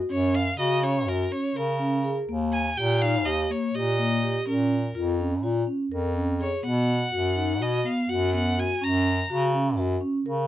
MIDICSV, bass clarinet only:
0, 0, Header, 1, 2, 480
1, 0, Start_track
1, 0, Tempo, 483481
1, 99, Time_signature, 9, 3, 24, 8
1, 10397, End_track
2, 0, Start_track
2, 0, Title_t, "Bass clarinet"
2, 0, Program_c, 0, 71
2, 90, Note_on_c, 0, 42, 82
2, 519, Note_off_c, 0, 42, 0
2, 574, Note_on_c, 0, 49, 89
2, 1058, Note_on_c, 0, 42, 80
2, 1073, Note_off_c, 0, 49, 0
2, 1273, Note_off_c, 0, 42, 0
2, 1539, Note_on_c, 0, 49, 79
2, 2179, Note_off_c, 0, 49, 0
2, 2266, Note_on_c, 0, 39, 86
2, 2692, Note_off_c, 0, 39, 0
2, 2754, Note_on_c, 0, 46, 99
2, 3233, Note_on_c, 0, 39, 86
2, 3248, Note_off_c, 0, 46, 0
2, 3445, Note_off_c, 0, 39, 0
2, 3712, Note_on_c, 0, 46, 79
2, 4348, Note_off_c, 0, 46, 0
2, 4440, Note_on_c, 0, 46, 79
2, 4861, Note_off_c, 0, 46, 0
2, 4915, Note_on_c, 0, 41, 80
2, 5388, Note_on_c, 0, 46, 80
2, 5403, Note_off_c, 0, 41, 0
2, 5603, Note_off_c, 0, 46, 0
2, 5869, Note_on_c, 0, 41, 81
2, 6505, Note_off_c, 0, 41, 0
2, 6594, Note_on_c, 0, 47, 87
2, 7016, Note_off_c, 0, 47, 0
2, 7073, Note_on_c, 0, 42, 84
2, 7558, Note_on_c, 0, 47, 88
2, 7573, Note_off_c, 0, 42, 0
2, 7766, Note_off_c, 0, 47, 0
2, 8034, Note_on_c, 0, 42, 85
2, 8664, Note_off_c, 0, 42, 0
2, 8748, Note_on_c, 0, 42, 84
2, 9169, Note_off_c, 0, 42, 0
2, 9229, Note_on_c, 0, 49, 93
2, 9702, Note_on_c, 0, 42, 86
2, 9717, Note_off_c, 0, 49, 0
2, 9913, Note_off_c, 0, 42, 0
2, 10182, Note_on_c, 0, 49, 87
2, 10397, Note_off_c, 0, 49, 0
2, 10397, End_track
0, 0, End_of_file